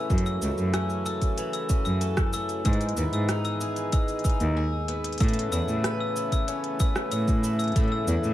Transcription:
Already playing: C#3 E3 A3 C#4 E4 B4
0.10 F#2 F#3, kick, shaker
0.18 closed hi-hat
0.26 E6, shaker
0.42 C#2 A3, shaker
0.58 F#2, shaker
0.74 C#4 E6, cross-stick, closed hi-hat, shaker
0.90 shaker
1.06 A4 E6, shaker
1.22 kick, closed hi-hat, shaker
1.37 E3, closed hi-hat, shaker
1.53 E6, closed hi-hat, shaker
1.69 C#4, kick, shaker
1.85 F#2 E6, shaker
2.01 A4, closed hi-hat, shaker
2.17 kick, cross-stick, shaker
2.33 A3 E6, shaker
2.49 closed hi-hat, shaker
2.65 G#2 D#3 G#3 B3 E6, kick, closed hi-hat, shaker
2.73 closed hi-hat
2.81 closed hi-hat, shaker
2.89 closed hi-hat
2.97 D#2 B3, shaker
3.13 G#2 E6, closed hi-hat, shaker
3.29 D#4, cross-stick, closed hi-hat, shaker
3.45 E6, closed hi-hat, shaker
3.61 G#4, shaker
3.76 closed hi-hat, shaker
3.92 G#3 E6, kick, closed hi-hat, shaker
4.08 closed hi-hat, shaker
4.19 closed hi-hat
4.24 D#4 E6, kick, shaker
4.30 closed hi-hat
4.40 D#2, closed hi-hat, shaker
4.57 G#4
4.88 B3, closed hi-hat
5.04 closed hi-hat
5.12 closed hi-hat
5.18 closed hi-hat
5.20 A2 C#3 E3 A3 B3 E6, kick, closed hi-hat, shaker
5.28 closed hi-hat
5.33 closed hi-hat
5.39 closed hi-hat
5.52 E2 E4 E6, shaker
5.68 A2, shaker
5.84 B4, cross-stick, closed hi-hat, shaker
6.01 E6
6.16 E4, shaker
6.32 E6, kick, closed hi-hat, shaker
6.48 C#4, closed hi-hat, shaker
6.64 closed hi-hat
6.80 B4 E6, kick, shaker
6.96 cross-stick, shaker
7.12 A2 C#4 E6, closed hi-hat, shaker
7.28 kick, shaker
7.44 E4, shaker
7.59 E6, closed hi-hat, shaker
7.64 closed hi-hat
7.68 closed hi-hat
7.72 A3, kick, closed hi-hat
7.76 A2, closed hi-hat, shaker
7.80 closed hi-hat
7.84 closed hi-hat
7.88 closed hi-hat
7.92 E6
8.08 E2 E4, shaker
8.24 A2, shaker

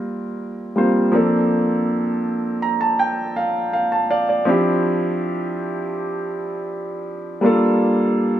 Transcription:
Already playing: G3 A#3 C4 F4 A#4
0.76 G3 A#3 C4 F4 C5
1.12 F3 A#3 C4 D4
1.16 A4
2.62 A#5
2.81 A5
2.99 G5
3.36 F5
3.73 F5
3.92 A5
4.11 D5 F5
4.29 D5
4.45 F3 C4 D4 E4
4.50 G4
7.41 G3 A#3 D4 F4
7.46 A4

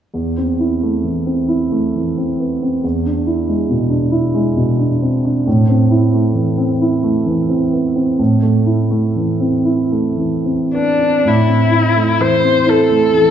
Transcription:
0.14 E2
0.37 C4
0.59 E4
0.83 A3
1.04 E3
1.26 C4
1.48 E4
1.71 A3
1.95 E3
2.17 C4
2.39 B3
2.62 C4
2.84 E2
3.05 D4
3.26 E4
3.48 G#3
3.70 B2
3.90 D4
4.11 E4
4.34 G#3
4.57 B2
4.79 D4
5.02 C4
5.25 D4
5.47 A2
5.69 C4
5.91 E4
6.13 A3
6.34 E3
6.58 C4
6.81 E4
7.03 A3
7.26 E3
7.49 C4
7.72 B3
7.95 C4
8.19 A2
8.42 A3
8.66 E4
8.90 A3
9.16 E3
9.40 C4
9.65 E4
9.91 A3
10.17 E3
10.45 C4
10.73 B3 D4
10.99 C4
11.24 A2 E4
11.47 C4
11.71 E4
11.96 A3
12.20 E3 C5
12.42 C4
12.66 E4 A4
12.89 A3
13.13 E3

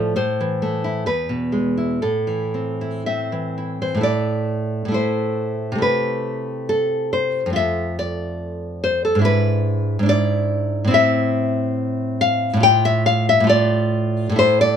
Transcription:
Already playing: A2 F3 A3 F4 A4 D5
0.16 A2 C5
0.41 E3
0.62 A3
0.84 E4
1.06 E2 B4
1.29 B2
1.52 G#3
1.78 E4
2.02 A2 A4
2.27 E3
2.54 C4
2.81 E4
3.06 C4 E5
3.32 E3
3.58 E4
3.82 E3 C5
3.95 A2 A3
4.01 E4 D5
4.85 A2 A3
4.92 E4 C5
5.72 C3 A3
5.78 E4 B4
6.69 A4
7.13 C5
7.46 F2 A3
7.53 F4 E5
7.99 D5
8.84 C5
9.05 A4
9.15 G#2 D4
9.21 E4 B4
9.99 G#2 D4
10.06 E4 D5
10.85 A2 C4
10.91 E4 E5
12.21 F5
12.54 A2 A3
12.60 F4 G5
12.85 E5
13.06 F5
13.29 E5
13.40 A2 A3
13.47 F4 D5
14.29 A2 A3
14.36 E4 C5
14.61 D5

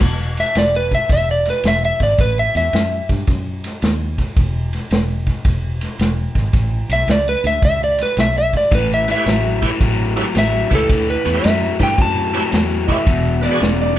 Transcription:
0.01 E1, kick, snare, crash
0.37 E5, snare, ride
0.55 E1 D5, snare, ride
0.76 B4
0.91 E5, kick, snare, ride
1.09 E1 E5, kick, snare, ride
1.31 D5
1.45 snare, ride
1.50 B4
1.64 E1, snare, ride
1.68 E5
1.85 E5
2.00 G#1 D5, kick, snare, ride
2.18 A1 B4, kick, snare, ride
2.39 E5
2.55 E2 E5, snare, ride
2.73 F#2, snare, ride
3.09 G2, kick, snare, ride
3.27 F#2, kick, snare, ride
3.64 snare, ride
3.82 D#2, snare, ride
4.18 kick, snare, ride
4.37 E1, kick, snare, ride
4.73 snare, ride
4.91 E1, snare, ride
5.27 kick, snare, ride
5.45 E1, kick, snare, ride
5.81 snare, ride
5.99 E1, snare, ride
6.35 G#1, kick, snare, ride
6.53 A1, kick, snare, ride
6.89 B1 E5, snare, ride
7.08 C#2 D5, snare, ride
7.29 B4
7.44 D2 E5, snare, ride
7.62 C#2 E5, kick, snare, ride
7.84 D5
7.98 snare, ride
8.03 B4
8.17 B1 E5, snare, ride
8.38 E5
8.53 D5, kick, snare, ride
8.71 A1 A2 E3 B4, kick, snare, ride
8.94 E5
9.07 A2 E3 B4 C#5, snare, ride
9.11 E5
9.16 E4 G4 B4 C#5
9.26 A1 A2 F#3, snare, ride
9.61 A2 E3 E4 G4 B4 C#5, kick, snare, ride
9.80 A1 A2 F#3, kick, snare, ride
10.16 A2 F#3 E4 G4 B4 C#5, snare, ride
10.34 A1 A2 F#3, snare, ride
10.39 E5
10.70 C#2 A2 E3 E4 G4 B4 C#5, kick, snare, ride
10.75 A4
10.89 D2 A2 E3, kick, snare, ride
11.10 B4
11.25 E2 A2 E3 B4 C#5, snare, ride
11.34 E4 G4 B4 C#5
11.43 F#2 A2 F#3, snare, ride
11.47 E5
11.79 G2 A2 E3 E4 G4 B4 C#5, kick, snare, ride
11.83 G5
11.98 F#2 A2 F#3, kick, snare, ride
12.02 A5
12.33 A2 F#3 E4 G4 B4 C#5, snare, ride
12.52 E2 A2 F#3, snare, ride
12.87 A2 E3 E4 G4 B4 C#5 D#5, kick, snare, ride
12.91 E5
13.07 E1 E2 B2, kick, snare, ride
13.41 E2 B2 B4 D5, snare, ride
13.46 D5
13.50 F#4 G#4 B4 D5
13.61 E1 E2 C#3, snare, ride
13.81 D5

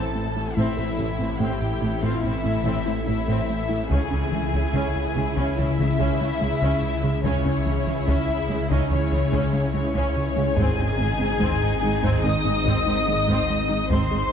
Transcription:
Already playing: A1 E3 C4 E4 A4 A5
0.15 A3
0.36 A2 A3 E4
0.56 A1 A2 E3 A3 C4 E4 A4 E5
0.77 A2 C4 A4
0.98 A1 A2 A3 C4
1.19 A2 C4
1.40 A1 A2 A3 C4 G4 G5
1.62 A2
1.81 A1 A2 A3 E4
2.02 A2 A3 C4 F4 F5
2.23 A1 A2 C4 E4 E5
2.44 A2 A3 C4
2.64 A1 A2 A3 C4
2.86 A2 A3 C4 E4
3.06 A1 A2 A3 E4 E5
3.27 A2 A3 C4
3.49 A3
3.69 A2 A3 E4
3.90 C#2 C#3 C#4 E4 G#4 G#5, taiko
4.10 C#2 C#3 C#4
4.32 C#2 C#3 E3 G#3
4.52 C#2 C#3 E3 C#4
4.74 C#2 C#3 C#4
4.95 C#2
5.16 C#2 C#3 G#3, taiko
5.36 C#2 C#3 C#4
5.58 C#2 C#3 E3 C#4 E4 E5
5.78 C#2 C#3 E3 G#3
5.98 C#2 C#3 C#4
6.19 C#3 G#3 C#4
6.40 C#2 C#3 G#3
6.62 C#2 C#3 C#4
6.83 C#3
7.03 C#3 G#3
7.24 C#2 C#3 C#4 E4 G#4 C#5, taiko
7.45 C#2 C#3 C#4
7.66 C#2 C#3 E3 G#3
7.86 C#2 C#3 E3 C#4
8.06 C#2 C#3 C#4 E4 E5, taiko
8.29 C#2
8.49 C#2 C#3 G#3
8.69 C#2 C#3 C#4 D#4 D#5, taiko
8.90 C#2 C#3 E3 C#4 C#5
9.11 C#2 C#3 E3 G#3
9.32 C#2 C#3 C#4, taiko
9.53 C#3 G#3 C#4
9.74 C#2 C#3 G#3 C#4 C#5
9.94 C#2 C#3 C#4, taiko
10.17 C#3
10.36 C#3 G#3
10.56 G#1 G#2 D#3 G#3 C4 D#4 G#4 G#5, taiko
10.77 G#2 C4 G#4
10.98 G#1 G#2 G#3 C4
11.19 G#2 C4
11.40 G#1 G#2 G#3 C4, taiko
11.63 G#2
11.82 G#1 G#2 G#3 D#4
12.03 G#2 G#3 C4, taiko
12.23 G#1 G#2 C4 D#5 D#6
12.45 G#2 G#3 C4
12.65 G#1 G#2 G#3 C4, taiko
12.86 G#2 G#3 C4 D#4
13.06 G#1 G#2 G#3 D#4
13.28 G#2 G#3 C4, taiko
13.50 G#3
13.69 G#2 G#3 D#4
13.90 G#1 G#2 D#3 G#3 C4 D#4 G#4 C5 C6, taiko
14.11 G#2 C4 G#4

